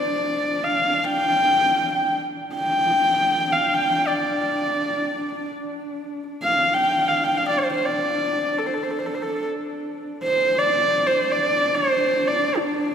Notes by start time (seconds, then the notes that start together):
Already playing: D4 D5
0.64 F5
1.04 G5
2.34 D4
2.54 G5
3.52 F5
3.73 G5
4.07 D5
6.32 D4
6.43 F5
6.74 G5
7.08 F5
7.24 G5
7.37 F5
7.48 D5
7.59 C5
7.73 C5
7.85 D5
8.58 A4
8.66 C5
8.74 A4
8.83 C5
8.90 A4
8.99 C5
9.06 A4
9.14 C5
9.22 A4
10.23 C5
10.31 D4
10.58 D5
11.06 C5
11.32 D5
11.75 C5
12.27 D5
12.58 D4